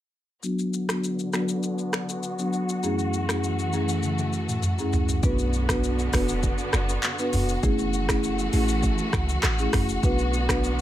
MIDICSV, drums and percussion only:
0, 0, Header, 1, 2, 480
1, 0, Start_track
1, 0, Tempo, 600000
1, 347, Time_signature, 4, 2, 24, 8
1, 8649, End_track
2, 0, Start_track
2, 0, Title_t, "Drums"
2, 346, Note_on_c, 9, 82, 67
2, 426, Note_off_c, 9, 82, 0
2, 471, Note_on_c, 9, 82, 47
2, 551, Note_off_c, 9, 82, 0
2, 588, Note_on_c, 9, 82, 63
2, 668, Note_off_c, 9, 82, 0
2, 711, Note_on_c, 9, 37, 109
2, 716, Note_on_c, 9, 82, 95
2, 719, Note_on_c, 9, 26, 86
2, 791, Note_off_c, 9, 37, 0
2, 796, Note_off_c, 9, 82, 0
2, 799, Note_off_c, 9, 26, 0
2, 831, Note_on_c, 9, 82, 75
2, 911, Note_off_c, 9, 82, 0
2, 953, Note_on_c, 9, 82, 56
2, 1033, Note_off_c, 9, 82, 0
2, 1064, Note_on_c, 9, 82, 51
2, 1068, Note_on_c, 9, 37, 84
2, 1076, Note_on_c, 9, 26, 66
2, 1144, Note_off_c, 9, 82, 0
2, 1148, Note_off_c, 9, 37, 0
2, 1156, Note_off_c, 9, 26, 0
2, 1189, Note_on_c, 9, 82, 90
2, 1269, Note_off_c, 9, 82, 0
2, 1305, Note_on_c, 9, 82, 69
2, 1385, Note_off_c, 9, 82, 0
2, 1428, Note_on_c, 9, 82, 49
2, 1508, Note_off_c, 9, 82, 0
2, 1544, Note_on_c, 9, 37, 96
2, 1544, Note_on_c, 9, 82, 46
2, 1552, Note_on_c, 9, 26, 79
2, 1624, Note_off_c, 9, 37, 0
2, 1624, Note_off_c, 9, 82, 0
2, 1632, Note_off_c, 9, 26, 0
2, 1674, Note_on_c, 9, 82, 80
2, 1754, Note_off_c, 9, 82, 0
2, 1784, Note_on_c, 9, 82, 73
2, 1864, Note_off_c, 9, 82, 0
2, 1911, Note_on_c, 9, 82, 53
2, 1991, Note_off_c, 9, 82, 0
2, 2024, Note_on_c, 9, 82, 49
2, 2104, Note_off_c, 9, 82, 0
2, 2153, Note_on_c, 9, 82, 79
2, 2233, Note_off_c, 9, 82, 0
2, 2267, Note_on_c, 9, 82, 68
2, 2347, Note_off_c, 9, 82, 0
2, 2391, Note_on_c, 9, 82, 49
2, 2471, Note_off_c, 9, 82, 0
2, 2508, Note_on_c, 9, 82, 63
2, 2588, Note_off_c, 9, 82, 0
2, 2631, Note_on_c, 9, 37, 104
2, 2636, Note_on_c, 9, 82, 94
2, 2639, Note_on_c, 9, 26, 83
2, 2711, Note_off_c, 9, 37, 0
2, 2716, Note_off_c, 9, 82, 0
2, 2719, Note_off_c, 9, 26, 0
2, 2750, Note_on_c, 9, 82, 77
2, 2830, Note_off_c, 9, 82, 0
2, 2872, Note_on_c, 9, 82, 58
2, 2952, Note_off_c, 9, 82, 0
2, 2984, Note_on_c, 9, 82, 54
2, 3064, Note_off_c, 9, 82, 0
2, 3109, Note_on_c, 9, 82, 90
2, 3189, Note_off_c, 9, 82, 0
2, 3224, Note_on_c, 9, 82, 67
2, 3226, Note_on_c, 9, 48, 52
2, 3304, Note_off_c, 9, 82, 0
2, 3306, Note_off_c, 9, 48, 0
2, 3347, Note_on_c, 9, 82, 50
2, 3351, Note_on_c, 9, 48, 49
2, 3427, Note_off_c, 9, 82, 0
2, 3431, Note_off_c, 9, 48, 0
2, 3464, Note_on_c, 9, 82, 45
2, 3544, Note_off_c, 9, 82, 0
2, 3591, Note_on_c, 9, 47, 62
2, 3593, Note_on_c, 9, 82, 83
2, 3671, Note_off_c, 9, 47, 0
2, 3673, Note_off_c, 9, 82, 0
2, 3702, Note_on_c, 9, 82, 73
2, 3706, Note_on_c, 9, 45, 84
2, 3782, Note_off_c, 9, 82, 0
2, 3786, Note_off_c, 9, 45, 0
2, 3830, Note_on_c, 9, 82, 53
2, 3910, Note_off_c, 9, 82, 0
2, 3943, Note_on_c, 9, 82, 51
2, 3946, Note_on_c, 9, 43, 94
2, 4023, Note_off_c, 9, 82, 0
2, 4026, Note_off_c, 9, 43, 0
2, 4070, Note_on_c, 9, 43, 78
2, 4071, Note_on_c, 9, 82, 81
2, 4150, Note_off_c, 9, 43, 0
2, 4151, Note_off_c, 9, 82, 0
2, 4185, Note_on_c, 9, 82, 69
2, 4186, Note_on_c, 9, 36, 117
2, 4265, Note_off_c, 9, 82, 0
2, 4266, Note_off_c, 9, 36, 0
2, 4310, Note_on_c, 9, 82, 51
2, 4390, Note_off_c, 9, 82, 0
2, 4428, Note_on_c, 9, 82, 66
2, 4508, Note_off_c, 9, 82, 0
2, 4550, Note_on_c, 9, 36, 100
2, 4551, Note_on_c, 9, 37, 113
2, 4556, Note_on_c, 9, 82, 102
2, 4559, Note_on_c, 9, 26, 90
2, 4630, Note_off_c, 9, 36, 0
2, 4631, Note_off_c, 9, 37, 0
2, 4636, Note_off_c, 9, 82, 0
2, 4639, Note_off_c, 9, 26, 0
2, 4670, Note_on_c, 9, 82, 78
2, 4750, Note_off_c, 9, 82, 0
2, 4792, Note_on_c, 9, 82, 61
2, 4872, Note_off_c, 9, 82, 0
2, 4904, Note_on_c, 9, 46, 80
2, 4904, Note_on_c, 9, 82, 56
2, 4908, Note_on_c, 9, 36, 95
2, 4908, Note_on_c, 9, 37, 91
2, 4916, Note_on_c, 9, 26, 73
2, 4984, Note_off_c, 9, 46, 0
2, 4984, Note_off_c, 9, 82, 0
2, 4988, Note_off_c, 9, 36, 0
2, 4988, Note_off_c, 9, 37, 0
2, 4996, Note_off_c, 9, 26, 0
2, 5029, Note_on_c, 9, 82, 92
2, 5109, Note_off_c, 9, 82, 0
2, 5144, Note_on_c, 9, 82, 77
2, 5145, Note_on_c, 9, 36, 91
2, 5224, Note_off_c, 9, 82, 0
2, 5225, Note_off_c, 9, 36, 0
2, 5267, Note_on_c, 9, 82, 54
2, 5347, Note_off_c, 9, 82, 0
2, 5384, Note_on_c, 9, 37, 108
2, 5384, Note_on_c, 9, 82, 48
2, 5392, Note_on_c, 9, 26, 83
2, 5464, Note_off_c, 9, 37, 0
2, 5464, Note_off_c, 9, 82, 0
2, 5472, Note_off_c, 9, 26, 0
2, 5513, Note_on_c, 9, 82, 89
2, 5593, Note_off_c, 9, 82, 0
2, 5623, Note_on_c, 9, 82, 77
2, 5626, Note_on_c, 9, 39, 95
2, 5703, Note_off_c, 9, 82, 0
2, 5706, Note_off_c, 9, 39, 0
2, 5750, Note_on_c, 9, 82, 58
2, 5830, Note_off_c, 9, 82, 0
2, 5864, Note_on_c, 9, 45, 96
2, 5864, Note_on_c, 9, 46, 75
2, 5864, Note_on_c, 9, 82, 54
2, 5944, Note_off_c, 9, 45, 0
2, 5944, Note_off_c, 9, 46, 0
2, 5944, Note_off_c, 9, 82, 0
2, 5992, Note_on_c, 9, 82, 80
2, 6072, Note_off_c, 9, 82, 0
2, 6105, Note_on_c, 9, 82, 71
2, 6106, Note_on_c, 9, 36, 125
2, 6185, Note_off_c, 9, 82, 0
2, 6186, Note_off_c, 9, 36, 0
2, 6229, Note_on_c, 9, 82, 54
2, 6309, Note_off_c, 9, 82, 0
2, 6347, Note_on_c, 9, 82, 65
2, 6427, Note_off_c, 9, 82, 0
2, 6470, Note_on_c, 9, 36, 97
2, 6470, Note_on_c, 9, 37, 116
2, 6475, Note_on_c, 9, 82, 101
2, 6478, Note_on_c, 9, 26, 88
2, 6550, Note_off_c, 9, 36, 0
2, 6550, Note_off_c, 9, 37, 0
2, 6555, Note_off_c, 9, 82, 0
2, 6558, Note_off_c, 9, 26, 0
2, 6589, Note_on_c, 9, 82, 85
2, 6669, Note_off_c, 9, 82, 0
2, 6711, Note_on_c, 9, 82, 57
2, 6791, Note_off_c, 9, 82, 0
2, 6823, Note_on_c, 9, 46, 78
2, 6823, Note_on_c, 9, 82, 57
2, 6903, Note_off_c, 9, 46, 0
2, 6903, Note_off_c, 9, 82, 0
2, 6948, Note_on_c, 9, 82, 91
2, 7028, Note_off_c, 9, 82, 0
2, 7064, Note_on_c, 9, 82, 72
2, 7065, Note_on_c, 9, 36, 91
2, 7144, Note_off_c, 9, 82, 0
2, 7145, Note_off_c, 9, 36, 0
2, 7186, Note_on_c, 9, 82, 54
2, 7266, Note_off_c, 9, 82, 0
2, 7304, Note_on_c, 9, 37, 102
2, 7304, Note_on_c, 9, 82, 47
2, 7305, Note_on_c, 9, 36, 93
2, 7312, Note_on_c, 9, 26, 86
2, 7384, Note_off_c, 9, 37, 0
2, 7384, Note_off_c, 9, 82, 0
2, 7385, Note_off_c, 9, 36, 0
2, 7392, Note_off_c, 9, 26, 0
2, 7433, Note_on_c, 9, 82, 85
2, 7513, Note_off_c, 9, 82, 0
2, 7543, Note_on_c, 9, 82, 82
2, 7546, Note_on_c, 9, 37, 97
2, 7546, Note_on_c, 9, 39, 97
2, 7554, Note_on_c, 9, 26, 74
2, 7623, Note_off_c, 9, 82, 0
2, 7626, Note_off_c, 9, 37, 0
2, 7626, Note_off_c, 9, 39, 0
2, 7634, Note_off_c, 9, 26, 0
2, 7671, Note_on_c, 9, 82, 60
2, 7751, Note_off_c, 9, 82, 0
2, 7784, Note_on_c, 9, 37, 99
2, 7784, Note_on_c, 9, 45, 98
2, 7784, Note_on_c, 9, 46, 73
2, 7784, Note_on_c, 9, 82, 54
2, 7787, Note_on_c, 9, 36, 92
2, 7793, Note_on_c, 9, 26, 80
2, 7864, Note_off_c, 9, 37, 0
2, 7864, Note_off_c, 9, 45, 0
2, 7864, Note_off_c, 9, 46, 0
2, 7864, Note_off_c, 9, 82, 0
2, 7867, Note_off_c, 9, 36, 0
2, 7873, Note_off_c, 9, 26, 0
2, 7913, Note_on_c, 9, 82, 87
2, 7993, Note_off_c, 9, 82, 0
2, 8026, Note_on_c, 9, 82, 74
2, 8027, Note_on_c, 9, 36, 127
2, 8106, Note_off_c, 9, 82, 0
2, 8107, Note_off_c, 9, 36, 0
2, 8150, Note_on_c, 9, 82, 54
2, 8230, Note_off_c, 9, 82, 0
2, 8268, Note_on_c, 9, 82, 69
2, 8348, Note_off_c, 9, 82, 0
2, 8391, Note_on_c, 9, 36, 99
2, 8391, Note_on_c, 9, 37, 114
2, 8397, Note_on_c, 9, 82, 103
2, 8400, Note_on_c, 9, 26, 95
2, 8471, Note_off_c, 9, 36, 0
2, 8471, Note_off_c, 9, 37, 0
2, 8477, Note_off_c, 9, 82, 0
2, 8480, Note_off_c, 9, 26, 0
2, 8511, Note_on_c, 9, 82, 78
2, 8591, Note_off_c, 9, 82, 0
2, 8649, End_track
0, 0, End_of_file